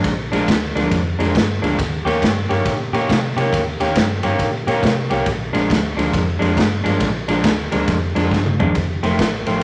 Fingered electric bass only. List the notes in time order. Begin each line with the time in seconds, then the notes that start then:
0.04 A#1
0.31 A#1
0.48 D2
0.76 D2
0.92 F2
1.19 F2
1.35 G2
1.62 D2
1.79 D#2
2.06 D#2
2.23 G2
2.50 G2
2.66 A#2
2.92 A#2
3.10 C3
3.36 C3
3.53 D#2
3.80 D#2
3.96 G2
4.24 G2
4.39 A#2
4.67 A#2
4.83 C3
5.10 C2
5.26 A#1
5.54 A#1
5.70 D2
5.97 D2
6.14 F2
6.41 F2
6.57 G2
6.85 G2
7.01 A#1
7.28 A#1
7.44 D2
7.72 D2
7.88 F2
8.16 F2
8.32 G2
8.61 G1
8.75 F1
9.03 F1
9.19 A1
9.48 A1